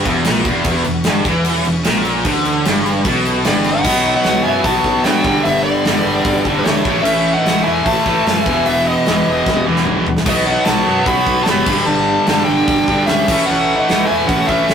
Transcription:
Already playing: analog synth pad E3 F#4 B4
0.05 fingered electric bass E1, overdriven electric guitar E2, kick, crash
0.25 fingered electric bass A#1, overdriven electric guitar A#2, snare, crash
0.45 fingered electric bass E1, overdriven electric guitar E2, kick, crash
0.64 fingered electric bass E1, overdriven electric guitar E2, analog synth pad C#4, kick, crash
0.84 fingered electric bass E1, overdriven electric guitar E2, crash
1.04 fingered electric bass G1, overdriven electric guitar G2, snare, crash
1.25 fingered electric bass E2, overdriven electric guitar E3, kick, snare, crash
1.45 crash
1.55 snare
1.65 fingered electric bass E1, overdriven electric guitar E2, crash
1.84 fingered electric bass A#1, overdriven electric guitar A#2, snare, crash
2.05 crash
2.25 fingered electric bass D2, overdriven electric guitar D3, kick, crash
2.45 crash
2.65 fingered electric bass G1, overdriven electric guitar G2, snare, crash
2.86 crash
3.04 fingered electric bass B1, overdriven electric guitar B2, kick, crash
3.25 crash
3.45 fingered electric bass G1, overdriven electric guitar G2, lead electric guitar B3 D5, snare, crash
3.64 lead electric guitar D#4 F#5, crash
3.85 fingered electric bass B1, overdriven electric guitar B2 F#3, analog synth pad B3 F#4 C#5, kick, crash
3.89 overdriven electric guitar B3
4.14 lead electric guitar D#4 F#5
4.24 fingered electric bass B1, snare, open hi-hat
4.44 fingered electric bass F#2, overdriven electric guitar B2 F#3 B3, lead electric guitar E4 G#5
4.64 fingered electric bass B1, overdriven electric guitar B2 F#3 B3, lead electric guitar F#4 A5, kick, open hi-hat
4.84 fingered electric bass B1, kick
5.03 fingered electric bass A2, overdriven electric guitar B2 F#3 B3, lead electric guitar D4 G5, snare, open hi-hat
5.24 fingered electric bass G1, overdriven electric guitar G2 D3 G3, analog synth pad G3 D4 A4, kick
5.43 fingered electric bass G1, lead electric guitar B3 E5, open hi-hat
5.63 lead electric guitar B3 D5
5.85 fingered electric bass G1, overdriven electric guitar G2 D3 G3, snare, open hi-hat
6.05 fingered electric bass G1, overdriven electric guitar G2 D3 G3
6.25 fingered electric bass G1, kick, open hi-hat
6.45 fingered electric bass G1, overdriven electric guitar G2 D3 G3, kick
6.58 lead electric guitar G3 B4
6.63 fingered electric bass D2, lead electric guitar A3 C#5, snare, open hi-hat
6.84 fingered electric bass A1, overdriven electric guitar A2 E3 A3, analog synth pad E3 A3 B4, kick
7.02 lead electric guitar C#4 E5, crash
7.06 fingered electric bass A1
7.33 lead electric guitar D#4 F#5
7.45 fingered electric bass A1, overdriven electric guitar A2 E3 A3, snare, open hi-hat
7.64 fingered electric bass E2, overdriven electric guitar A3, lead electric guitar E4 G#5
7.68 overdriven electric guitar A2 E3
7.85 fingered electric bass A1, lead electric guitar E4 A5, kick, open hi-hat
8.06 fingered electric bass A1, overdriven electric guitar A2 E3 A3, kick
8.26 fingered electric bass F#2, lead electric guitar E4 G#5, snare, open hi-hat
8.46 fingered electric bass E1, overdriven electric guitar E2 B2 E3, analog synth pad F#5, kick
8.66 fingered electric bass E1, lead electric guitar B3 E5, open hi-hat
8.84 lead electric guitar B3 D#5
9.06 fingered electric bass E1, overdriven electric guitar E2 B2 E3, snare, open hi-hat
9.27 fingered electric bass E1, overdriven electric guitar E2 B2 E3
9.46 fingered electric bass E1, kick, snare
9.56 high tom
9.67 fingered electric bass E1, overdriven electric guitar E2 B2 E3
9.76 snare
9.86 fingered electric bass B1, mid tom
10.07 fingered electric bass E1, floor tom
10.17 snare
10.26 fingered electric bass B1, overdriven electric guitar B2 F#3 B3, lead electric guitar B3 D#5, analog synth pad B3 F#4 C#5, kick, splash, crash
10.46 lead electric guitar D#4 F#5
10.65 fingered electric bass B1, lead electric guitar F#4 A5, snare, open hi-hat
10.86 fingered electric bass F#2, overdriven electric guitar B2 F#3 B3
11.05 fingered electric bass B1, overdriven electric guitar B2 F#3, lead electric guitar F#4 B5, kick, open hi-hat
11.10 overdriven electric guitar B3
11.27 fingered electric bass B1, kick
11.43 overdriven electric guitar B2, lead electric guitar F#4 G4 A5, snare, open hi-hat
11.48 fingered electric bass F#1, overdriven electric guitar F#3 B3, lead electric guitar B5
11.66 fingered electric bass G1, overdriven electric guitar G2 D3, analog synth pad G3 D4 A4, kick, crash
11.70 overdriven electric guitar G3
11.86 fingered electric bass G1, lead electric guitar D4 A5
12.27 fingered electric bass G1, overdriven electric guitar G2 D3, snare, open hi-hat
12.31 overdriven electric guitar G3
12.45 fingered electric bass G1, lead electric guitar D4 G5
12.49 overdriven electric guitar G2 D3 G3
12.68 fingered electric bass G1, kick, open hi-hat
12.88 fingered electric bass G1, overdriven electric guitar G2 D3 G3, kick
13.06 fingered electric bass D2, lead electric guitar C#4 E5, snare, open hi-hat
13.28 fingered electric bass A1, overdriven electric guitar A2 E3 A3, analog synth pad E3 B4, kick, crash
13.32 analog synth pad A3
13.46 lead electric guitar C#4 F#5
13.51 fingered electric bass A1
13.75 lead electric guitar D#4 F#5
13.88 fingered electric bass A1, overdriven electric guitar A2 E3 A3, snare, open hi-hat
14.07 overdriven electric guitar A3, lead electric guitar E4 G#5
14.11 fingered electric bass E2, overdriven electric guitar A2 E3
14.26 fingered electric bass A1, lead electric guitar C#4 F#5, kick, open hi-hat
14.46 fingered electric bass A1, overdriven electric guitar A3, lead electric guitar C#4 E5, kick
14.51 overdriven electric guitar A2 E3
14.69 fingered electric bass F#1, snare, open hi-hat

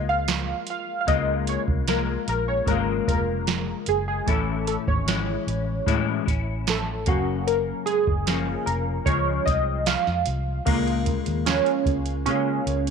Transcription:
Already playing: fingered electric bass C#2, clean electric guitar G#3 A#3 F4, synth keys D#5
0.09 synth keys F5
0.28 snare, closed hi-hat
0.67 synth keys F5, closed hi-hat
1.01 synth keys F5
1.07 fingered electric bass C#2, clean electric guitar C#3 G#3 A#3 F4, synth keys D#5, kick, closed hi-hat
1.47 synth keys C#5, closed hi-hat
1.68 fingered electric bass C2, kick
1.88 clean electric guitar G#3 A#3 F4, synth keys A#4, snare, closed hi-hat
2.28 fingered electric bass A#1, synth keys A#4, closed hi-hat
2.48 synth keys C#5
2.66 fingered electric bass G#1, clean electric guitar C#3 G#3, synth keys A#4, kick, closed hi-hat
2.70 clean electric guitar A#3 F4
3.08 fingered electric bass F1, synth keys A#4, kick, closed hi-hat
3.47 snare, closed hi-hat
3.86 fingered electric bass F#1, synth keys G#4, closed hi-hat
4.08 synth keys G#4
4.26 fingered electric bass A1, clean electric guitar A2 E3 C#4 E4, synth keys A4, kick, closed hi-hat
4.67 synth keys A4, closed hi-hat
4.87 fingered electric bass G#1, synth keys C#5, kick
5.06 clean electric guitar E3 G#3 C#4 E4, snare, closed hi-hat
5.47 fingered electric bass A1, closed hi-hat
5.86 clean electric guitar A2 E3 G#3 C#4 E4, fingered electric bass A2, kick, closed hi-hat
6.25 fingered electric bass A1, clean electric guitar C#4 E4, kick, closed hi-hat
6.67 synth keys A4, snare, closed hi-hat
7.06 fingered electric bass F#1, clean electric guitar F#2 C#3 A#3 C#4, synth keys F#4, kick, closed hi-hat
7.47 synth keys A#4, closed hi-hat
7.86 synth keys G#4, closed hi-hat
8.07 fingered electric bass F#1, kick
8.26 clean electric guitar C#3 F3 A#3 C#4, snare, closed hi-hat
8.66 fingered electric bass F1, synth keys A#4, closed hi-hat
9.05 fingered electric bass C#2, clean electric guitar C#3 F3 G#3, synth keys C#5, kick, closed hi-hat
9.45 fingered electric bass C2, clean electric guitar F3 G#3 C4, synth keys D#5, kick, closed hi-hat
9.86 synth keys F5, snare, closed hi-hat
10.07 fingered electric bass F2, snare
10.26 fingered electric bass C2, closed hi-hat
10.65 fingered electric bass C#2, clean electric guitar C#3 G#3 A#3 F4, synth keys A#3, kick, closed hi-hat, crash
10.88 closed hi-hat
11.06 kick, closed hi-hat
11.26 fingered electric bass D#2, closed hi-hat
11.45 clean electric guitar C#3 G#3 A#3 F4, synth keys C#4, snare, closed hi-hat
11.66 closed hi-hat
11.86 fingered electric bass C#2, kick, closed hi-hat
12.06 closed hi-hat
12.26 clean electric guitar C#3 G#3 A#3 F4, fingered electric bass C#3, synth keys C#4, closed hi-hat
12.67 fingered electric bass C#2, closed hi-hat
12.87 closed hi-hat

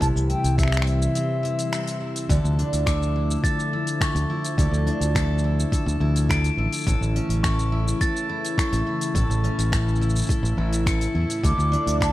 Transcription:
Already playing: steel-string acoustic guitar E4
0.01 fingered electric bass C2, steel-string acoustic guitar C3, analog synth pad C3 E3 G3, flute A5, kick, open hi-hat, shaker
0.16 fingered electric bass C2, shaker
0.30 steel-string acoustic guitar E4, flute G5, open hi-hat
0.44 fingered electric bass C2, open hi-hat, shaker
0.58 steel-string acoustic guitar C4, flute E5, finger snap, kick, open hi-hat, shaker
0.63 finger snap
0.68 finger snap
0.72 finger snap, shaker
0.77 finger snap
0.82 finger snap
0.87 steel-string acoustic guitar E4, flute E5, open hi-hat
1.02 shaker
1.15 steel-string acoustic guitar C4, open hi-hat, shaker
1.43 steel-string acoustic guitar E4, open hi-hat
1.59 open hi-hat, shaker
1.72 steel-string acoustic guitar C4, finger snap, open hi-hat, shaker
1.87 open hi-hat, shaker
2.01 steel-string acoustic guitar E4
2.16 open hi-hat, shaker
2.28 fingered electric bass D2, analog synth pad D3 F3 A3 E4, steel-string acoustic guitar D3 A4, kick, open hi-hat, shaker
2.44 fingered electric bass D2, shaker
2.59 steel-string acoustic guitar D4, open hi-hat
2.73 fingered electric bass D2, open hi-hat, shaker
2.86 steel-string acoustic guitar A4, glockenspiel D6, finger snap, kick, open hi-hat, shaker
3.03 shaker
3.16 steel-string acoustic guitar E4
3.31 shaker
3.44 steel-string acoustic guitar A4, glockenspiel A6, kick, open hi-hat, shaker
3.60 shaker
3.73 steel-string acoustic guitar E4
3.87 open hi-hat, shaker
4.01 steel-string acoustic guitar A4, glockenspiel C#6, finger snap, kick, open hi-hat, shaker
4.15 fingered electric bass D2, open hi-hat, shaker
4.30 steel-string acoustic guitar E4
4.44 open hi-hat, shaker
4.58 fingered electric bass D2, steel-string acoustic guitar D3 A4, kick, open hi-hat, shaker
4.71 fingered electric bass D2, shaker
4.87 steel-string acoustic guitar D4, open hi-hat
5.01 fingered electric bass D2, open hi-hat, shaker
5.15 steel-string acoustic guitar A4, finger snap, kick, open hi-hat, shaker
5.39 shaker
5.44 steel-string acoustic guitar E4
5.60 shaker
5.72 steel-string acoustic guitar A4, kick, open hi-hat, shaker
5.86 fingered electric bass D2, shaker
6.00 fingered electric bass D2, steel-string acoustic guitar E4
6.16 open hi-hat, shaker
6.29 steel-string acoustic guitar A4, glockenspiel D7, finger snap, kick, open hi-hat, shaker
6.44 open hi-hat, shaker
6.57 fingered electric bass A1, steel-string acoustic guitar E4
6.73 open hi-hat, shaker
6.76 shaker
6.78 shaker
6.81 shaker
6.84 shaker
6.86 fingered electric bass A1, steel-string acoustic guitar A2 A4, analog synth pad C#3 E3 A3, kick, open hi-hat, shaker
6.88 shaker
7.01 fingered electric bass A1, shaker
7.16 steel-string acoustic guitar C#4, open hi-hat
7.29 fingered electric bass A1, open hi-hat
7.43 steel-string acoustic guitar A4, glockenspiel C#6, finger snap, kick, open hi-hat, shaker
7.59 shaker
7.72 steel-string acoustic guitar E4
7.88 shaker
8.01 steel-string acoustic guitar A4, glockenspiel A6, kick, open hi-hat, shaker
8.17 shaker
8.29 steel-string acoustic guitar E4
8.45 open hi-hat, shaker
8.58 steel-string acoustic guitar A4, glockenspiel C#6, finger snap, kick, open hi-hat, shaker
8.73 fingered electric bass A1, open hi-hat, shaker
8.87 steel-string acoustic guitar E4
9.01 open hi-hat, shaker
9.15 fingered electric bass A1, steel-string acoustic guitar A2 A4, kick, open hi-hat, shaker
9.30 fingered electric bass A1, shaker
9.44 steel-string acoustic guitar C#4, open hi-hat
9.58 fingered electric bass A1, open hi-hat, shaker
9.72 steel-string acoustic guitar A4, finger snap, kick, open hi-hat, shaker
9.89 shaker
9.95 shaker
10.01 steel-string acoustic guitar E4, shaker
10.10 shaker
10.16 shaker
10.18 shaker
10.21 shaker
10.23 shaker
10.26 shaker
10.29 steel-string acoustic guitar A4, kick, open hi-hat, shaker
10.31 shaker
10.43 fingered electric bass A1, shaker
10.57 fingered electric bass A1, steel-string acoustic guitar E4
10.73 open hi-hat, shaker
10.86 steel-string acoustic guitar A4, glockenspiel C#7, finger snap, kick, open hi-hat, shaker
11.01 open hi-hat, shaker
11.15 fingered electric bass E2, steel-string acoustic guitar E4
11.30 open hi-hat, shaker
11.43 fingered electric bass D2, analog synth pad D3 F3, steel-string acoustic guitar D3 A4, flute D6, kick, open hi-hat, shaker
11.58 fingered electric bass D2, shaker
11.72 steel-string acoustic guitar D4, open hi-hat
11.87 fingered electric bass D2, open hi-hat, shaker
12.00 steel-string acoustic guitar A4, flute A5, glockenspiel D6, finger snap, kick, open hi-hat, shaker

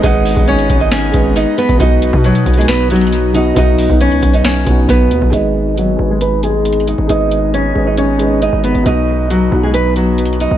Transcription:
Already playing: felt piano G#3 G#4 B4 C#5 D#5, analog synth pad G#3 B3 D#4
0.02 808-style bass G#1, felt piano G#3 G#4 B4, nylon-string guitar D#4 D#5, kick, closed hi-hat
0.06 felt piano F#5
0.26 open hi-hat
0.34 808-style bass G#1, felt piano G#3 G#4 B4, kick
0.38 felt piano D#5
0.48 nylon-string guitar C#4 C#5, closed hi-hat
0.59 closed hi-hat
0.70 808-style bass G#1, kick, closed hi-hat
0.80 nylon-string guitar D#4 D#5
0.91 nylon-string guitar C#4 C#5, snare, closed hi-hat
1.11 808-style bass G#1, felt piano G#3 G#4 B4, kick, closed hi-hat
1.15 felt piano D#5
1.36 nylon-string guitar D#4 D#5, closed hi-hat
1.58 nylon-string guitar B3 B4, closed hi-hat
1.69 808-style bass G#1, kick, closed hi-hat
1.78 808-style bass B1, felt piano B2 B3 D#4, analog synth pad F#3, nylon-string guitar D#4 D#5, kick, closed hi-hat
1.82 felt piano F#4
2.02 closed hi-hat
2.13 808-style bass B2, kick
2.24 nylon-string guitar F#3 F#4, closed hi-hat
2.35 closed hi-hat
2.46 808-style bass B1, kick, closed hi-hat
2.54 felt piano B2 B3, nylon-string guitar G#4, closed hi-hat
2.58 nylon-string guitar G#3, felt piano D#4 F#4, closed hi-hat
2.68 nylon-string guitar B3 B4, snare, closed hi-hat
2.88 felt piano B2 B3 D#4, nylon-string guitar F#3 F#4, closed hi-hat
2.92 felt piano F#4, closed hi-hat
3.01 closed hi-hat
3.07 closed hi-hat
3.12 closed hi-hat
3.33 felt piano B2 B3 D#4, nylon-string guitar D#4 D#5, closed hi-hat
3.37 felt piano F#4
3.54 808-style bass B1, felt piano B2 B3 D#4, nylon-string guitar D#4 D#5, kick, closed hi-hat
3.58 felt piano F#4
3.78 open hi-hat
3.88 808-style bass B1, felt piano B2 B3 D#4, kick
3.92 felt piano F#4
4.01 nylon-string guitar C#4 C#5, closed hi-hat
4.12 808-style bass C#2, closed hi-hat
4.22 808-style bass B1, kick, closed hi-hat
4.34 nylon-string guitar D#4 D#5, closed hi-hat
4.44 nylon-string guitar C#4 C#5, snare, closed hi-hat
4.65 808-style bass B1, felt piano B2 B3 D#4, kick, closed hi-hat
4.69 felt piano F#4
4.89 808-style bass B1, nylon-string guitar B3 B4, kick, closed hi-hat
5.11 808-style bass D#2, closed hi-hat
5.22 808-style bass B1, kick
5.30 808-style bass G#1, felt piano G#3 G#4 B4, analog synth pad G#3 B3 D#4, nylon-string guitar D#4 D#5, closed hi-hat
5.34 felt piano D#5
5.78 nylon-string guitar F#3 F#4, closed hi-hat
5.97 808-style bass G#1, felt piano G#3 G#4 B4
6.01 felt piano D#5
6.10 nylon-string guitar G#3 G#4
6.21 nylon-string guitar B3 B4, closed hi-hat
6.43 nylon-string guitar G#3 G#4, closed hi-hat
6.65 closed hi-hat
6.73 closed hi-hat
6.80 closed hi-hat
6.87 nylon-string guitar D#4 D#5, closed hi-hat
6.98 808-style bass G#1
7.07 808-style bass G#1, felt piano G#3 G#4 B4, nylon-string guitar D#4 D#5, closed hi-hat
7.11 felt piano D#5
7.31 closed hi-hat
7.54 nylon-string guitar C#4 C#5, closed hi-hat
7.74 808-style bass G#1, felt piano G#3 G#4 B4
7.78 felt piano D#5
7.86 nylon-string guitar D#4 D#5
7.97 nylon-string guitar C#4 C#5, closed hi-hat
8.18 felt piano G#3 G#4 B4, closed hi-hat
8.22 felt piano D#5
8.42 nylon-string guitar D#4 D#5, closed hi-hat
8.53 808-style bass G#1
8.64 nylon-string guitar B3 B4, closed hi-hat
8.75 808-style bass G#1, closed hi-hat
8.83 808-style bass B1, felt piano B2 B3 D#4, analog synth pad F#3, nylon-string guitar D#4 D#5, closed hi-hat
8.88 felt piano F#4
9.30 nylon-string guitar F#3 F#4, closed hi-hat
9.50 808-style bass B1, felt piano B2 B3 D#4
9.54 felt piano F#4
9.63 nylon-string guitar G#3 G#4
9.74 nylon-string guitar B3 B4, closed hi-hat
9.96 nylon-string guitar F#3 F#4, closed hi-hat
10.18 closed hi-hat
10.25 closed hi-hat
10.33 closed hi-hat
10.40 nylon-string guitar D#4 D#5, closed hi-hat
10.51 808-style bass B1

